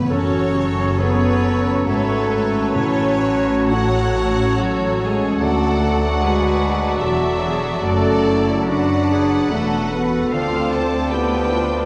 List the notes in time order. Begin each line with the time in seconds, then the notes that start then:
Already playing: A2 A3 B3 C#4 E4 B4
0.09 F#1 F#2 F#3 C#4 F#4 A4 C#5 A5
0.54 C#3 F#4 A4
0.99 A3 B3 G#4 A4 B4 C#5
1.44 C#4 F#4
1.87 G#1 G#2 A3 F#4 A4 B4 C#5
2.31 C#4 B4
2.75 A1 A2 C#4 E4 A4 C#5
3.22 F#3 F#4
3.71 A3 F#4 A4 C#5 F#5
4.17 C#4
4.58 F#3 F#4 A4
5.00 G#3 C#4 G#4
5.40 D2 D3 F#3 A3 F#4 A4 D5 F#5 A5
5.81 A3 F#4
6.21 G#3 D4 F#4 G#4 B4
6.61 F#4
7.01 E1 E2 F#3 F#4 A4 E5
7.41 F#4 G#4
7.82 F#1 F#2 A3 F#4 A4 D5
8.25 F#3 E4
8.68 A3 D4 F#4 B4 D5 F#5
9.10 D4 G#4
9.51 E1 E2 A3 F#4 A4
9.92 B3 D4 B4
10.32 D2 D3 F3 C4 F4 A4 C5 D5 F5 A5
10.72 A5
11.11 A3 B3 E4 G4 B4 G5
11.53 D4 F4